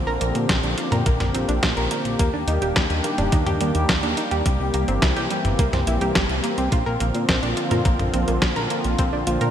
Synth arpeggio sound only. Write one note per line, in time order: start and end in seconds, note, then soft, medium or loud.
0.07 0.17 A#4 loud
0.21 0.27 A#3 medium
0.49 0.59 C4 medium
0.64 0.70 D4 medium
0.78 0.84 F4 medium
0.92 1.02 A#4 medium
1.06 1.16 A#3 medium
1.35 1.41 C4 medium
1.49 1.59 D4 medium
1.63 1.76 F4 medium
1.77 1.87 A#4 medium
1.91 1.97 A#3 medium
2.19 2.29 A#3 loud
2.34 2.40 D4 medium
2.48 2.54 D#4 medium
2.62 2.72 G4 medium
2.76 2.86 G3 medium
3.04 3.10 A#3 medium
3.18 3.28 D4 medium
3.33 3.46 D#4 medium
3.47 3.57 G4 loud
3.61 3.67 G3 medium
3.89 3.99 A#3 loud
4.03 4.09 D4 medium
4.17 4.23 D#4 medium
4.31 4.42 G4 medium
4.46 4.56 G3 medium
4.74 4.80 A#3 medium
4.88 4.98 C4 medium
5.03 5.16 E4 medium
5.17 5.27 G4 loud
5.31 5.37 G3 medium
5.59 5.69 A#3 loud
5.73 5.79 C4 medium
5.87 5.93 E4 medium
6.02 6.12 G4 medium
6.16 6.26 G3 medium
6.44 6.50 A#3 medium
6.58 6.68 C4 medium
6.72 6.86 F4 medium
6.86 6.96 A#4 loud
7.00 7.06 A#3 medium
7.29 7.39 C4 loud
7.43 7.49 D4 medium
7.57 7.63 F4 medium
7.71 7.81 A#4 medium
7.85 7.95 A#3 medium
8.14 8.20 C4 medium
8.28 8.41 A#3 medium
8.42 8.55 F4 medium
8.56 8.66 A#4 loud
8.70 8.76 A#3 medium
8.99 9.09 C4 loud
9.13 9.19 D4 medium
9.27 9.33 F4 medium
9.41 9.51 A#4 medium